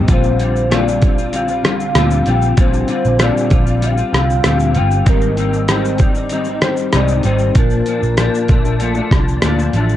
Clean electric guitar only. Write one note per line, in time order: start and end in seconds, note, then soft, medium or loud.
0.08 0.40 A#2 medium
0.08 0.37 D3 medium
0.08 0.38 G3 medium
0.08 0.39 C4 medium
0.08 0.40 F4 medium
0.38 0.69 D3 medium
0.38 0.70 G3 medium
0.38 0.70 C4 medium
0.38 0.70 F4 medium
0.70 1.02 A#2 medium
0.70 1.00 D3 medium
0.70 1.02 G3 medium
0.70 1.02 C4 medium
0.70 1.02 F4 medium
1.01 1.17 D3 medium
1.01 1.18 G3 medium
1.01 1.17 C4 medium
1.01 1.16 F4 medium
1.18 1.32 G3 soft
1.18 1.33 C4 medium
1.18 1.33 F4 medium
1.33 1.49 D3 medium
1.33 1.49 G3 medium
1.33 1.48 C4 medium
1.33 1.47 F4 medium
1.48 1.62 G3 soft
1.48 1.64 C4 soft
1.48 1.64 F4 medium
1.62 1.94 D3 medium
1.62 1.95 G3 medium
1.62 1.96 C4 medium
1.62 1.96 F4 medium
1.95 2.27 A#2 medium
1.95 2.25 D3 medium
1.95 2.25 G3 medium
1.95 2.26 C4 medium
1.95 2.27 F4 medium
2.26 2.56 D3 medium
2.26 2.57 G3 medium
2.26 2.57 C4 medium
2.26 2.58 F4 medium
2.57 2.89 A#2 medium
2.57 2.86 D3 medium
2.57 2.87 G3 medium
2.57 2.87 C4 medium
2.57 2.88 F4 medium
2.87 3.18 D3 medium
2.87 3.18 G3 medium
2.87 3.18 C4 medium
2.87 3.19 F4 medium
3.18 3.50 A#2 medium
3.18 3.47 D3 medium
3.18 3.49 G3 medium
3.18 3.49 C4 medium
3.18 3.50 F4 medium
3.48 3.65 D3 medium
3.48 3.66 G3 medium
3.48 3.65 C4 medium
3.48 3.64 F4 medium
3.65 3.80 G3 soft
3.65 3.81 C4 soft
3.65 3.82 F4 medium
3.80 3.97 D3 medium
3.80 3.98 G3 medium
3.80 3.97 C4 medium
3.80 3.95 F4 medium
3.96 4.11 G3 soft
3.96 4.12 C4 soft
3.96 4.13 F4 medium
4.12 4.43 D3 medium
4.12 4.43 G3 medium
4.12 4.44 C4 medium
4.12 4.44 F4 medium
4.43 4.75 A#2 medium
4.43 4.72 D3 medium
4.43 4.73 G3 medium
4.43 4.74 C4 medium
4.43 4.75 F4 medium
4.74 5.05 D3 medium
4.74 5.04 G3 medium
4.74 5.05 C4 medium
4.74 5.06 F4 medium
5.04 5.37 G#2 medium
5.04 5.36 D#3 medium
5.04 5.36 G3 medium
5.04 5.38 C4 medium
5.04 5.38 D#4 medium
5.37 5.67 D#3 medium
5.37 5.68 G3 medium
5.37 5.68 C4 medium
5.37 5.68 D#4 medium
5.67 6.00 G#2 medium
5.67 5.98 D#3 medium
5.67 5.99 G3 medium
5.67 6.00 C4 medium
5.67 6.00 D#4 medium
5.99 6.15 D#3 medium
5.99 6.16 G3 medium
5.99 6.16 C4 medium
5.99 6.14 D#4 medium
6.16 6.30 G3 soft
6.16 6.32 C4 soft
6.16 6.31 D#4 medium
6.31 6.47 D#3 medium
6.31 6.47 G3 medium
6.31 6.48 C4 medium
6.31 6.46 D#4 medium
6.47 6.62 G3 soft
6.47 6.63 C4 medium
6.47 6.63 D#4 medium
6.62 6.92 D#3 medium
6.62 6.92 G3 medium
6.62 6.92 C4 medium
6.62 6.93 D#4 medium
6.92 7.24 G#2 medium
6.92 7.23 D#3 medium
6.92 7.23 G3 medium
6.92 7.24 C4 medium
6.92 7.25 D#4 medium
7.24 7.55 D#3 medium
7.24 7.56 G3 medium
7.24 7.56 C4 medium
7.24 7.57 D#4 medium
7.55 7.86 A#2 medium
7.55 7.87 F3 medium
7.55 7.88 D4 medium
7.87 8.16 A#2 medium
7.87 8.17 F3 medium
7.87 8.19 D4 medium
8.18 8.47 A#2 medium
8.18 8.49 F3 medium
8.18 8.50 D4 medium
8.49 8.65 A#2 medium
8.49 8.65 F3 medium
8.49 8.65 A3 medium
8.49 8.63 D4 medium
8.64 8.80 F3 medium
8.64 8.81 A3 medium
8.64 8.80 D4 medium
8.81 8.96 A#2 medium
8.81 8.97 F3 medium
8.81 8.96 A3 medium
8.81 8.95 D4 medium
8.96 9.12 F3 medium
8.96 9.12 A3 medium
8.96 9.11 D4 medium
9.12 9.42 A#2 medium
9.12 9.43 F3 medium
9.12 9.43 D4 medium
9.43 9.74 A#2 medium
9.43 9.73 F3 medium
9.43 9.75 D4 medium
9.75 9.97 F3 medium
9.75 9.97 A3 medium
9.75 9.97 D4 medium